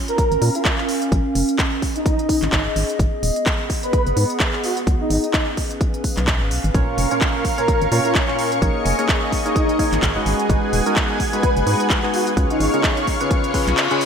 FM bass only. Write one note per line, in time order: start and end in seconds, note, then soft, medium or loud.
0.32 0.38 G#1 medium
0.42 0.50 A#2 loud
1.12 1.20 A#1 loud
1.35 1.43 F1 loud
2.42 2.49 G#1 medium
2.53 2.68 G#1 medium
2.76 2.84 G#1 medium
2.99 3.08 G#1 medium
3.23 3.31 D#1 loud
4.07 4.13 F#1 medium
4.17 4.25 G#2 loud
4.87 4.95 C#2 medium
5.10 5.18 G#1 loud
6.17 6.42 B1 medium
6.41 6.52 G#1 loud
6.51 6.59 B1 medium
6.64 6.71 G#1 medium
6.74 6.83 A#1 loud
6.98 7.06 F1 loud
7.82 7.88 G#1 medium
7.92 8.00 A#2 medium
8.62 8.70 A#1 loud
8.86 8.94 F1 loud
9.93 9.99 G#1 medium
10.03 10.18 G#1 medium
10.26 10.34 G#1 medium
10.50 10.58 G#1 loud
10.73 10.81 D#1 loud
11.57 11.63 F#1 medium
11.67 11.75 G#2 loud
12.37 12.45 C#2 medium
12.60 12.68 G#1 loud
13.67 13.74 B1 medium